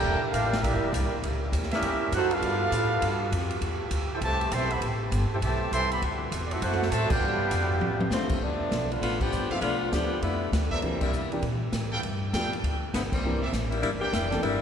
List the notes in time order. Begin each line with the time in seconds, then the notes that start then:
Already playing: D3 A#3 C4 E4 G4 A#4 D5 G5
0.04 E1
0.21 muted upright bass stroke
0.31 A1 G3 A#3 D4 F4 G4 A#4 F5, kick, hi-hat pedal, ride
0.53 snare, ride
0.61 A#1 G3 A#3 D4 E4 G4 A#4 E5, kick, ride
0.72 G1
0.83 E1
0.91 C2 G3 A#3 D4 E4 G4 D5, kick, hi-hat pedal, ride
1.12 muted upright bass stroke
1.22 C#2 E3 C#4 G4, kick, ride
1.52 D#2, kick, hi-hat pedal, ride
1.63 snare
1.71 G3 A#3 C#4 E4 G4 A#4 E5, snare, ride
1.81 E2, kick, ride
2.12 F#2 D#4 F#4 A4 C5 F#5, kick, hi-hat pedal, ride
2.31 B3 D4 F4 A4 B4 F5, ride
2.42 G2 F3 A3 B3, kick, ride
2.71 A2, kick, hi-hat pedal, ride
3.02 G2, kick, ride
3.32 F2, kick, hi-hat pedal, ride
3.50 ride
3.61 E2 E3 C4, kick, ride
3.91 D2, kick, hi-hat pedal, ride
4.13 C4 E4 G4 A4 C5 G5
4.21 C2 C3 E3 A3 G4 C5 E5 A5, kick, ride
4.41 ride
4.51 B1 E3 G3 C4 A4 E5 G5 C6, kick, hi-hat pedal, ride
4.70 B3 G4 C5 E5 B5, ride
4.81 A1, kick, ride
5.12 G1, kick, hi-hat pedal, ride
5.31 C4 E4 G4 A4 C5 G5, muted upright bass stroke
5.42 B1 C3 E3 A3 G4 C5 E5 A5, kick, ride
5.72 C2 E3 G3 C4 A4 E5 G5 C6, kick, hi-hat pedal, ride
5.92 B3 G4 C5 E5 B5, ride
6.02 D2 C4 D4 F#4, kick, ride
6.32 E2, kick, hi-hat pedal, ride
6.47 A3 C4 E4 D5, ride
6.52 C4 F#4 A4 E5
6.62 F#2 A3 C4 E4 F#4 A4 C5 F#5, kick, ride
6.72 snare
6.82 snare
6.90 A2 C3 F#3 A3 F#4 C5 E5 G5 A5, kick, hi-hat pedal, ride
7.10 B3 D4 F4 G4 B4 D5 G5, kick, crash
7.20 G2 F3 A3 B3 G4
7.51 F2, kick, hi-hat pedal, ride
7.80 A2, high tom
8.00 high tom
8.10 F2 D3 F3 A3 C4, snare, hi-hat pedal
8.29 kick, crash
8.41 D2 F3 A3 B3 D4, kick
8.60 muted upright bass stroke
8.71 B1, kick, snare, hi-hat pedal, ride
8.90 A3 B3 D4 F4, ride
9.00 A1 A3 B3 D4 F4, kick, ride
9.20 F3 B3 D4 G4, kick, crash
9.31 G1, hi-hat pedal
9.49 F3 A3 B3 C4 D4 E4 G4 A4 B4 F5, muted upright bass stroke, ride
9.60 B1 A3 B3 D4 F4, kick, ride
9.91 D2 F3 A3 B3 D4 G4, kick, snare, hi-hat pedal, ride
10.22 F2 A3 B3 D4 E4, kick, ride
10.52 D2, kick, snare, hi-hat pedal, ride
10.70 F3 A3 B3 D4 A#4 C5 D5 E5, kick
10.82 C2 E3 G3 A#3 C4 D4 G4, kick, ride
11.01 G3 A#3 D4 E4, kick, crash
11.12 C3, hi-hat pedal
11.32 E3 A#3 C4 D4 G4, ride
11.42 A#2, kick, ride
11.72 A2, kick, snare, hi-hat pedal, ride
11.92 A4 B4 F5 G5
12.02 G2, kick, ride
12.33 E2 F3 A3 B3 D4 G4 A4 B4 F5 G5, kick, snare, hi-hat pedal, ride
12.53 ride
12.63 D2, kick, ride
12.93 G1 D3 F3 A3 B3, kick, snare, hi-hat pedal, ride
13.12 E3 G3 A#3 C4, kick, crash
13.23 C2 E3 A#3 C4 D4 G4
13.43 A#4 C5 D5 E5
13.53 A1, kick, snare, hi-hat pedal, ride
13.70 G3 A#3 D4 E4, ride
13.81 G1 G3 A#3 D4 E4, kick, ride
13.99 E3 A#3 D4 G4 A#4 C5 D5 G5
14.09 F1 G3 A#3 D4 E4, kick, snare, hi-hat pedal, ride
14.29 E3 G3 A#3 D4, snare, ride
14.33 C4 D4 A4
14.41 G1 G3 A#3 D4 E4, kick, ride